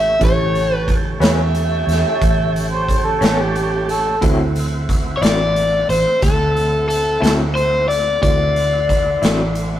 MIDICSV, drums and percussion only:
0, 0, Header, 1, 2, 480
1, 0, Start_track
1, 0, Tempo, 667408
1, 149, Time_signature, 12, 3, 24, 8
1, 7047, End_track
2, 0, Start_track
2, 0, Title_t, "Drums"
2, 152, Note_on_c, 9, 36, 85
2, 152, Note_on_c, 9, 42, 63
2, 223, Note_off_c, 9, 42, 0
2, 224, Note_off_c, 9, 36, 0
2, 397, Note_on_c, 9, 42, 45
2, 469, Note_off_c, 9, 42, 0
2, 632, Note_on_c, 9, 36, 64
2, 635, Note_on_c, 9, 42, 46
2, 704, Note_off_c, 9, 36, 0
2, 707, Note_off_c, 9, 42, 0
2, 874, Note_on_c, 9, 42, 66
2, 890, Note_on_c, 9, 38, 91
2, 946, Note_off_c, 9, 42, 0
2, 962, Note_off_c, 9, 38, 0
2, 1112, Note_on_c, 9, 42, 53
2, 1184, Note_off_c, 9, 42, 0
2, 1357, Note_on_c, 9, 42, 49
2, 1373, Note_on_c, 9, 38, 26
2, 1429, Note_off_c, 9, 42, 0
2, 1444, Note_off_c, 9, 38, 0
2, 1594, Note_on_c, 9, 36, 90
2, 1596, Note_on_c, 9, 42, 69
2, 1665, Note_off_c, 9, 36, 0
2, 1668, Note_off_c, 9, 42, 0
2, 1841, Note_on_c, 9, 42, 52
2, 1913, Note_off_c, 9, 42, 0
2, 2075, Note_on_c, 9, 36, 62
2, 2080, Note_on_c, 9, 42, 50
2, 2147, Note_off_c, 9, 36, 0
2, 2152, Note_off_c, 9, 42, 0
2, 2314, Note_on_c, 9, 42, 69
2, 2330, Note_on_c, 9, 38, 93
2, 2386, Note_off_c, 9, 42, 0
2, 2402, Note_off_c, 9, 38, 0
2, 2557, Note_on_c, 9, 42, 54
2, 2629, Note_off_c, 9, 42, 0
2, 2798, Note_on_c, 9, 42, 51
2, 2869, Note_off_c, 9, 42, 0
2, 3035, Note_on_c, 9, 42, 72
2, 3036, Note_on_c, 9, 36, 83
2, 3107, Note_off_c, 9, 42, 0
2, 3108, Note_off_c, 9, 36, 0
2, 3276, Note_on_c, 9, 42, 55
2, 3348, Note_off_c, 9, 42, 0
2, 3517, Note_on_c, 9, 36, 66
2, 3521, Note_on_c, 9, 42, 57
2, 3589, Note_off_c, 9, 36, 0
2, 3593, Note_off_c, 9, 42, 0
2, 3758, Note_on_c, 9, 42, 70
2, 3774, Note_on_c, 9, 38, 89
2, 3830, Note_off_c, 9, 42, 0
2, 3846, Note_off_c, 9, 38, 0
2, 4000, Note_on_c, 9, 42, 60
2, 4072, Note_off_c, 9, 42, 0
2, 4239, Note_on_c, 9, 42, 54
2, 4311, Note_off_c, 9, 42, 0
2, 4474, Note_on_c, 9, 42, 71
2, 4477, Note_on_c, 9, 36, 91
2, 4490, Note_on_c, 9, 38, 26
2, 4546, Note_off_c, 9, 42, 0
2, 4549, Note_off_c, 9, 36, 0
2, 4562, Note_off_c, 9, 38, 0
2, 4722, Note_on_c, 9, 42, 50
2, 4793, Note_off_c, 9, 42, 0
2, 4963, Note_on_c, 9, 42, 52
2, 5035, Note_off_c, 9, 42, 0
2, 5203, Note_on_c, 9, 42, 70
2, 5219, Note_on_c, 9, 38, 98
2, 5275, Note_off_c, 9, 42, 0
2, 5291, Note_off_c, 9, 38, 0
2, 5443, Note_on_c, 9, 42, 48
2, 5515, Note_off_c, 9, 42, 0
2, 5684, Note_on_c, 9, 42, 46
2, 5756, Note_off_c, 9, 42, 0
2, 5917, Note_on_c, 9, 36, 89
2, 5918, Note_on_c, 9, 42, 64
2, 5989, Note_off_c, 9, 36, 0
2, 5990, Note_off_c, 9, 42, 0
2, 6157, Note_on_c, 9, 42, 52
2, 6229, Note_off_c, 9, 42, 0
2, 6396, Note_on_c, 9, 36, 63
2, 6399, Note_on_c, 9, 42, 52
2, 6468, Note_off_c, 9, 36, 0
2, 6471, Note_off_c, 9, 42, 0
2, 6635, Note_on_c, 9, 42, 71
2, 6651, Note_on_c, 9, 38, 89
2, 6707, Note_off_c, 9, 42, 0
2, 6723, Note_off_c, 9, 38, 0
2, 6870, Note_on_c, 9, 42, 60
2, 6942, Note_off_c, 9, 42, 0
2, 7047, End_track
0, 0, End_of_file